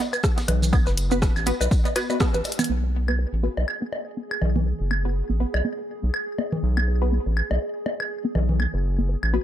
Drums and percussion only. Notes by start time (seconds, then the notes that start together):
0.00 snare
0.13 high woodblock, maracas
0.23 kick, cross-stick, tambourine, maracas
0.38 snare, closed hi-hat, tambourine, maracas
0.48 closed hi-hat, low conga, low woodblock
0.62 tambourine, low conga, maracas
0.73 kick, tambourine, high woodblock, maracas
0.87 snare, maracas
0.97 closed hi-hat, tambourine
1.11 maracas
1.22 kick, cross-stick, snare, tambourine, maracas
1.36 snare, high woodblock, maracas
1.46 closed hi-hat, tambourine
1.61 low woodblock, maracas
1.71 kick, tambourine, maracas
1.85 closed hi-hat, low woodblock, maracas
1.95 snare, closed hi-hat, tambourine, high woodblock
2.10 low woodblock, maracas
2.20 kick, cross-stick, snare, tambourine, maracas
2.34 closed hi-hat, maracas
2.44 closed hi-hat, tambourine, low woodblock
2.52 closed hi-hat
2.59 closed hi-hat, low conga, high woodblock, maracas
2.64 closed hi-hat
3.08 high woodblock
3.57 low woodblock
3.68 high woodblock
3.93 low woodblock
4.31 high woodblock
4.42 low conga, low woodblock
4.56 low conga
4.91 high woodblock
5.54 high woodblock, low woodblock
6.14 high woodblock
6.38 low woodblock
6.53 low conga
6.77 high woodblock
7.37 high woodblock
7.51 low woodblock
7.86 low woodblock
8.00 high woodblock
8.35 low conga, low woodblock
8.49 low conga
8.60 high woodblock
9.23 high woodblock